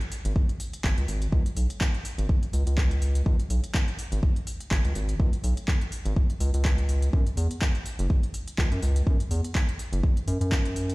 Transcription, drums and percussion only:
0.01 closed hi-hat soft
0.12 open hi-hat loud
0.25 closed hi-hat medium
0.36 kick loud
0.49 closed hi-hat soft
0.60 open hi-hat loud
0.73 closed hi-hat medium
0.84 kick loud
0.84 clap loud
0.98 closed hi-hat medium
1.08 open hi-hat loud
1.22 closed hi-hat medium
1.32 kick loud
1.46 closed hi-hat soft
1.57 open hi-hat loud
1.70 closed hi-hat medium
1.81 kick loud
1.81 clap loud
1.94 closed hi-hat soft
2.05 open hi-hat loud
2.19 closed hi-hat medium
2.29 kick loud
2.43 closed hi-hat soft
2.53 open hi-hat loud
2.67 closed hi-hat medium
2.78 kick loud
2.78 clap loud
2.91 closed hi-hat medium
3.02 open hi-hat loud
3.15 closed hi-hat medium
3.26 kick loud
3.40 closed hi-hat soft
3.50 open hi-hat loud
3.64 closed hi-hat medium
3.74 kick loud
3.74 clap loud
3.88 closed hi-hat soft
3.99 open hi-hat loud
4.12 closed hi-hat medium
4.23 kick loud
4.36 closed hi-hat soft
4.47 open hi-hat loud
4.61 closed hi-hat medium
4.71 kick loud
4.71 clap loud
4.85 closed hi-hat soft
4.95 open hi-hat loud
5.09 closed hi-hat medium
5.20 kick loud
5.33 closed hi-hat soft
5.44 open hi-hat loud
5.57 closed hi-hat medium
5.68 kick loud
5.68 clap loud
5.81 closed hi-hat soft
5.92 open hi-hat loud
6.06 closed hi-hat medium
6.16 kick loud
6.30 closed hi-hat soft
6.40 open hi-hat loud
6.54 closed hi-hat medium
6.65 kick loud
6.65 clap loud
6.78 closed hi-hat soft
6.89 open hi-hat loud
7.02 closed hi-hat medium
7.13 kick loud
7.27 closed hi-hat soft
7.37 open hi-hat loud
7.51 closed hi-hat medium
7.62 kick loud
7.62 clap loud
7.75 closed hi-hat soft
7.86 open hi-hat loud
7.99 closed hi-hat medium
8.10 kick loud
8.23 closed hi-hat soft
8.34 open hi-hat loud
8.48 closed hi-hat medium
8.58 kick loud
8.58 clap loud
8.72 closed hi-hat medium
8.82 open hi-hat loud
8.96 closed hi-hat medium
9.07 kick loud
9.20 closed hi-hat soft
9.31 open hi-hat loud
9.44 closed hi-hat medium
9.55 kick loud
9.55 clap loud
9.69 closed hi-hat soft
9.79 open hi-hat loud
9.93 closed hi-hat medium
10.03 kick loud
10.17 closed hi-hat soft
10.28 open hi-hat loud
10.41 closed hi-hat medium
10.52 kick loud
10.52 clap loud
10.65 closed hi-hat medium
10.76 open hi-hat loud
10.90 closed hi-hat medium

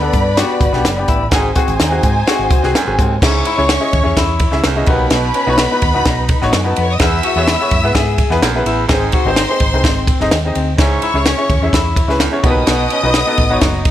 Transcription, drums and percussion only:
0.13 kick medium
0.13 closed hi-hat medium
0.37 snare loud
0.37 closed hi-hat medium
0.61 kick loud
0.61 closed hi-hat medium
0.73 snare soft
0.85 snare loud
0.85 closed hi-hat loud
1.08 kick medium
1.08 closed hi-hat medium
1.31 kick loud
1.31 snare loud
1.31 closed hi-hat medium
1.56 kick loud
1.56 closed hi-hat medium
1.68 closed hi-hat soft
1.80 snare loud
1.80 closed hi-hat loud
2.03 kick medium
2.03 closed hi-hat medium
2.27 snare loud
2.27 closed hi-hat medium
2.50 kick loud
2.50 closed hi-hat medium
2.63 snare soft
2.75 snare loud
2.75 closed hi-hat loud
2.99 kick loud
2.99 closed hi-hat medium
3.22 kick loud
3.22 snare loud
3.22 crash loud
3.45 ride medium
3.69 snare loud
3.69 ride medium
3.93 kick medium
3.93 ride medium
4.17 kick medium
4.17 snare loud
4.17 ride medium
4.39 kick loud
4.39 ride medium
4.52 snare soft
4.64 snare loud
4.64 ride medium
4.86 kick loud
4.86 ride medium
5.10 snare loud
5.10 ride medium
5.34 ride medium
5.58 snare loud
5.58 ride medium
5.82 kick medium
5.82 ride medium
6.05 kick medium
6.05 snare loud
6.05 ride medium
6.29 kick loud
6.29 ride medium
6.42 snare soft
6.53 snare loud
6.53 ride medium
6.76 ride medium
6.99 kick loud
6.99 snare loud
6.99 ride medium
7.23 ride medium
7.48 snare loud
7.48 ride medium
7.71 kick medium
7.71 ride medium
7.95 kick loud
7.95 snare loud
7.95 ride medium
8.18 kick loud
8.18 ride medium
8.31 snare soft
8.43 snare loud
8.43 ride medium
8.66 ride medium
8.89 kick loud
8.89 snare loud
8.89 ride medium
9.12 kick loud
9.12 ride medium
9.36 snare loud
9.36 ride medium
9.60 kick medium
9.60 ride medium
9.84 kick loud
9.84 snare loud
9.84 ride medium
10.07 kick loud
10.07 ride medium
10.20 snare soft
10.31 snare loud
10.31 ride medium
10.55 ride medium
10.78 kick loud
10.78 snare loud
10.78 ride medium
11.02 ride medium
11.26 snare loud
11.26 ride medium
11.50 kick medium
11.50 ride medium
11.73 kick loud
11.73 snare loud
11.73 ride medium
11.96 kick loud
11.96 ride medium
12.09 snare soft
12.20 snare loud
12.20 ride medium
12.44 kick loud
12.44 ride medium
12.67 snare loud
12.67 ride medium
12.90 ride medium
13.14 snare loud
13.14 ride medium
13.38 kick medium
13.38 ride medium
13.61 kick medium
13.61 snare loud
13.61 ride medium
13.85 kick loud
13.85 ride medium

